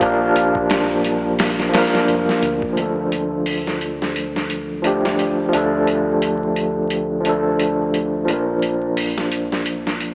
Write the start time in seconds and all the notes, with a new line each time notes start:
Already playing: A#1 F3 D4 G4
0.00 A#3 D4, kick, closed hi-hat
0.05 A#4
0.35 A#1, closed hi-hat
0.55 kick
0.70 snare, closed hi-hat
1.04 closed hi-hat
1.39 snare, open hi-hat
1.60 snare
1.69 F3 A#3
1.74 D4, snare, open hi-hat
1.78 A#4
1.95 snare
2.08 F1, closed hi-hat
2.29 snare
2.42 D2, closed hi-hat
2.62 kick
2.73 F3 A3
2.77 D2 D4, closed hi-hat
2.82 A4
3.12 closed hi-hat
3.46 open hi-hat
3.67 snare
3.81 closed hi-hat
4.02 snare
4.16 closed hi-hat
4.36 snare
4.50 closed hi-hat
4.82 F3 A3 D4, closed hi-hat
4.87 G4
5.05 snare
5.19 closed hi-hat
5.49 F3 A3
5.53 D2 D4, closed hi-hat
5.57 A4
5.87 closed hi-hat
6.22 closed hi-hat
6.56 closed hi-hat
6.90 closed hi-hat
7.21 F3 A3
7.25 D4, closed hi-hat
7.29 A4
7.59 closed hi-hat
7.94 closed hi-hat
8.25 F3 A#3, closed hi-hat
8.29 A#1 D4
8.33 A#4
8.62 closed hi-hat
8.97 open hi-hat
9.18 snare
9.32 closed hi-hat
9.52 snare
9.66 closed hi-hat
9.87 snare
10.00 closed hi-hat